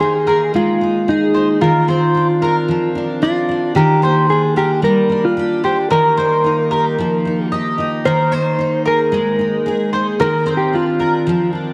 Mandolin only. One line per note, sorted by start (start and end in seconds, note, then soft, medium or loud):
0.00 0.12 C5 medium
0.27 0.40 A#4 medium
1.34 1.47 C5 medium
1.61 1.87 A#4 medium
1.88 2.26 C5 medium
2.42 2.55 A#4 medium
3.23 3.61 D5 medium
3.76 4.02 A#4 medium
4.03 4.41 C5 medium
4.57 4.70 A#4 medium
5.64 5.77 C5 medium
5.91 6.16 A#4 medium
6.17 6.55 C5 medium
6.71 6.84 A#4 medium
7.52 7.90 D#5 medium
8.05 8.32 A#4 medium
8.32 8.70 C5 medium
8.86 8.98 A#4 medium
9.93 10.06 C5 medium
10.20 10.45 A#4 medium
10.46 10.84 C5 medium
11.00 11.13 A#4 medium